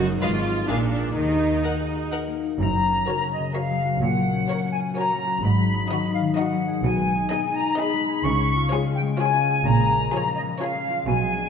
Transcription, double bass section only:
Already playing: F#1
0.21 G#1
0.68 A#1
1.16 D#2
2.60 F#1
4.02 A#1
5.42 G#1
6.83 B1
8.24 C#2
9.65 A#1
11.06 B1

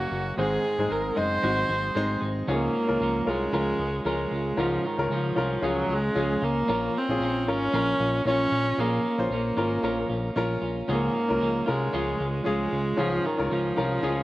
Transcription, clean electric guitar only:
Already playing: F#3 A#3 C#4
0.11 F#3 A#3 C#4 F#4
0.37 G#2 D#3 G#3 C4 D#4 G#4
0.63 G#3 C4 D#4 G#4
0.89 G#3 C4 D#4 G#4
1.15 G#3 C4 D#4 G#4
1.42 G#2 D#3 G#3 C4 D#4 G#4
1.68 G#3 C4 D#4 G#4
1.94 G#3 C4 D#4 G#4
2.21 G#3 C4 D#4 G#4
2.47 C#3 F3 G#3 C#4 F4
2.73 G#3 C#4 F4
3.00 F3 G#3 C#4 F4
3.27 G#3 C#4 F4
3.53 C#3 F3 G#3 C#4 F4
3.79 G#3 C#4 F4
4.05 F3 G#3 C#4 F4
4.31 G#3 C#4 F4
4.57 C#3 F3 G#3 C#4 F4
4.84 G#3 C#4 F4
5.11 F3 G#3 C#4 F4
5.36 G#3 C#4 F4
5.63 C#3 F3 G#3 C#4 F4
5.89 G#3 C#4 F4
6.14 F3 G#3 C#4 F4
6.42 G#3 C#4 F4
6.67 A#2 F3 A#3 C#4 F4
6.95 A#3 C#4 F4
7.20 F3 A#3 C#4 F4
7.47 A#3 C#4 F4
7.73 A#2 F3 A#3 C#4 F4
7.99 A#3 C#4 F4
8.25 F3 A#3 C#4 F4
8.52 A#3 C#4 F4
8.78 A#2 F3 A#3 C#4 F4
9.04 A#3 C#4 F4
9.31 F3 A#3 C#4 F4
9.57 A#3 C#4 F4
9.83 A#2 F3 A#3 C#4 F4
10.09 A#3 C#4 F4
10.36 F3 A#3 C#4 F4
10.62 A#3 C#4 F4
10.88 C#3 F3 G#3 C#4 F4
11.13 G#3 C#4 F4
11.41 F3 G#3 C#4 F4
11.66 G#3 C#4 F4
11.93 C#3 F3 G#3 C#4 F4
12.18 G#3 C#4 F4
12.44 F3 G#3 C#4 F4
12.71 G#3 C#4 F4
12.98 C#3 F3 G#3 C#4 F4
13.24 G#3 C#4 F4
13.50 F3 G#3 C#4 F4
13.76 G#3 C#4 F4
14.02 C#3 F3 G#3 C#4 F4

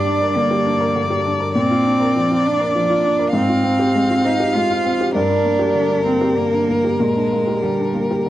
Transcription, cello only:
Already playing: D4
0.37 A#3
1.56 C4
2.45 D4
2.75 D4
3.33 C4
4.25 D#4
4.54 F4
5.14 D4
6.06 C4
6.36 A#3
7.00 G#3
7.62 G3

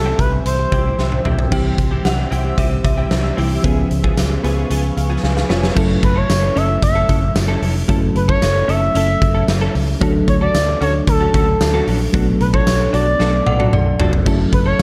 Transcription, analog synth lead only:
Already playing: A4
0.19 B4
0.46 C5
6.04 B4
6.17 C#5
6.57 E5
6.83 E5
8.16 B4
8.29 C#5
8.69 E5
8.95 E5
10.29 C#5
10.42 D5
10.82 C#5
11.08 A4
11.34 A4
12.40 B4
12.54 C#5
12.94 D5
14.53 B4
14.66 C#5

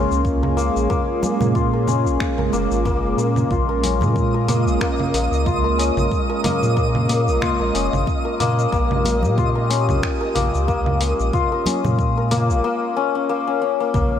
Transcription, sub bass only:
0.11 C#2
0.76 A#1
1.41 A#2
2.06 A#1
2.38 A#1
2.53 F1
2.71 G#1
3.03 F1
3.17 A#2
3.51 A#1
4.00 A#2
4.66 A#1
5.14 A#1
5.31 C#2
5.97 A#1
6.62 A#2
7.28 A#1
7.60 A#1
7.75 F1
7.93 G#1
8.40 A#2
8.72 A#1
9.23 A#2
9.89 A#1
10.36 A#1
10.55 C#2
11.20 A#1
11.85 A#2
12.50 A#1
13.94 A#1

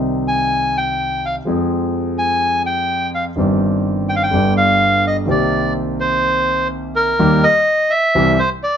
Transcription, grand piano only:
Already playing: C2 C3 D#3 G3 C4 D#4
1.45 F2 F3 G#3 C4 G#4
3.35 G1 G2 D#3 G3 C4
3.40 G4
4.31 G1 G2 D3 G3 B3 G4
5.26 C2 C3 D#3 A#3 C4 G4
7.19 D#2 D#3 G3 A#3 G4
8.15 C2 C3 E3 G3 C4 G4

